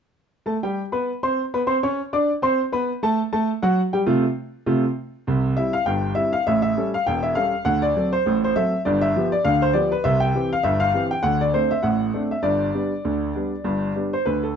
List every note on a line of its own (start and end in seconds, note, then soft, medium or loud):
0.46 0.55 A3 medium
0.46 0.55 A4 medium
0.46 0.56 A5 medium
0.63 0.80 G3 medium
0.63 0.80 G4 medium
0.63 0.80 G5 medium
0.92 1.09 B3 medium
0.92 1.09 B4 medium
0.92 1.09 B5 medium
1.23 1.40 C4 medium
1.23 1.40 C5 medium
1.23 1.40 C6 medium
1.54 1.61 B3 medium
1.54 1.61 B4 medium
1.54 1.61 B5 medium
1.67 1.76 C4 medium
1.67 1.76 C5 medium
1.67 1.76 C6 medium
1.83 2.00 C#4 medium
1.83 2.00 C#5 medium
1.83 2.00 C#6 medium
2.13 2.30 D4 medium
2.13 2.30 D5 medium
2.13 2.29 D6 medium
2.42 2.59 C4 medium
2.42 2.59 C5 medium
2.42 2.59 C6 medium
2.72 2.89 B3 medium
2.72 2.89 B4 medium
2.72 2.89 B5 medium
3.03 3.19 A3 medium
3.03 3.19 A4 medium
3.03 3.20 A5 medium
3.33 3.49 A3 medium
3.33 3.49 A4 medium
3.33 3.49 A5 medium
3.63 3.79 F#3 medium
3.63 3.79 F#4 medium
3.63 3.79 F#5 medium
3.93 4.00 G3 medium
3.93 4.00 G4 medium
3.93 4.00 G5 medium
4.06 4.23 C3 medium
4.06 4.23 A3 medium
4.06 4.23 C4 medium
4.06 4.23 F4 medium
4.66 4.83 C3 medium
4.66 4.83 A3 medium
4.66 4.83 C4 medium
4.66 4.83 F4 medium
5.27 5.52 C2 medium
5.27 5.52 C3 medium
5.57 5.74 G3 soft
5.57 5.73 C4 soft
5.57 5.74 E4 medium
5.57 5.73 E5 medium
5.73 5.86 F5 medium
5.86 6.12 G1 medium
5.86 6.12 G2 medium
5.86 6.10 G5 medium
6.15 6.32 G3 soft
6.15 6.33 C4 soft
6.15 6.33 E4 soft
6.15 6.32 E5 medium
6.33 6.46 F5 medium
6.47 6.72 A1 medium
6.47 6.72 A2 medium
6.47 6.61 E5 medium
6.62 6.86 E5 medium
6.77 6.93 G3 medium
6.77 6.93 C#4 soft
6.77 6.94 A4 soft
6.94 7.07 F5 medium
7.07 7.32 E1 medium
7.07 7.32 E2 medium
7.07 7.23 G5 medium
7.23 7.36 E5 medium
7.35 7.52 G3 soft
7.35 7.53 C#4 soft
7.35 7.53 A4 soft
7.35 7.64 F5 medium
7.65 7.91 D2 medium
7.65 7.91 D3 medium
7.65 7.82 F#5 loud
7.82 8.11 D5 medium
7.96 8.13 F#3 soft
7.96 8.13 C4 soft
7.96 8.13 A4 soft
8.13 8.36 C5 medium
8.26 8.51 A1 medium
8.26 8.51 A2 medium
8.44 8.56 C5 medium
8.56 8.72 F#3 soft
8.56 8.73 C4 soft
8.56 8.73 A4 medium
8.56 8.80 E5 medium
8.85 9.11 G1 medium
8.85 9.11 G2 medium
8.85 9.02 D5 medium
9.01 9.26 E5 medium
9.16 9.32 F3 medium
9.16 9.32 B3 medium
9.16 9.33 G4 medium
9.32 9.45 D5 medium
9.45 9.71 D2 medium
9.45 9.70 D3 medium
9.45 9.62 F5 medium
9.62 9.75 C5 medium
9.73 9.91 F3 soft
9.73 9.91 B3 medium
9.73 9.91 G4 medium
9.73 9.91 D5 medium
9.92 10.05 B4 medium
10.04 10.30 C2 medium
10.04 10.31 C3 medium
10.04 10.21 E5 loud
10.20 10.50 G5 loud
10.35 10.51 E3 medium
10.35 10.52 C4 medium
10.35 10.52 G4 medium
10.53 10.65 F5 medium
10.63 10.90 G1 medium
10.63 10.90 G2 medium
10.63 10.81 E5 medium
10.80 11.05 F5 medium
10.94 11.11 E3 medium
10.94 11.11 C4 soft
10.94 11.11 G4 medium
11.11 11.24 G5 medium
11.23 11.49 D2 medium
11.23 11.49 D3 medium
11.23 11.41 F#5 loud
11.41 11.54 D5 medium
11.54 11.71 A3 soft
11.54 11.70 C4 soft
11.54 11.71 D4 soft
11.54 11.71 C5 medium
11.71 11.84 E5 medium
11.83 12.10 A1 medium
11.83 12.09 A2 medium
11.83 12.21 F#5 medium
12.14 12.31 A3 soft
12.14 12.31 C4 soft
12.14 12.31 D4 soft
12.31 12.45 E5 medium
12.43 12.69 G1 medium
12.43 12.69 G2 medium
12.43 14.07 D5 medium
12.74 12.91 G3 soft
12.74 12.91 B3 soft
12.74 12.91 D4 soft
13.05 13.30 D2 medium
13.05 13.30 D3 medium
13.35 13.52 G3 soft
13.35 13.52 B3 soft
13.35 13.52 D4 soft
13.64 13.90 G1 medium
13.64 13.90 G2 medium
13.96 14.12 G3 soft
13.96 14.13 B3 soft
13.96 14.12 D4 soft
14.13 14.26 C5 medium
14.26 14.51 D2 medium
14.26 14.51 D3 medium
14.26 14.42 B4 medium
14.43 14.56 A4 medium